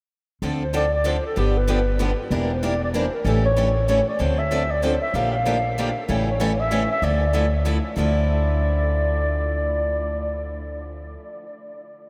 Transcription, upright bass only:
0.42 D2
1.37 G1
2.30 E1
3.25 A1
4.20 D2
5.14 A#1
6.09 A1
7.02 D2
7.97 D2

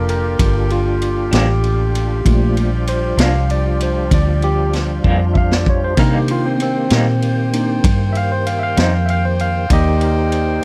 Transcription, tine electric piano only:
Already playing: A#3 F4 A4
0.10 A#4
0.72 F4
1.34 G4
2.25 A3 A#3 F4
2.89 C5
3.21 F5
3.51 D5
3.83 C5
4.14 D5
4.44 G4
5.34 E5 F5
5.54 D5
5.69 C#5
5.84 C5
5.97 A#3 D4 D#4 A#4
6.16 G4
6.31 F4
6.46 C4
6.57 B3
6.62 C4
7.53 A#3 D4 D#4
8.13 E5
8.17 F5
8.32 C5
8.47 F5
8.59 E5
8.63 F5
8.79 C5
8.94 F5
9.06 E5
9.10 F5
9.25 C5
9.41 F5
9.71 A#3 D#4 G4 D5 D#5

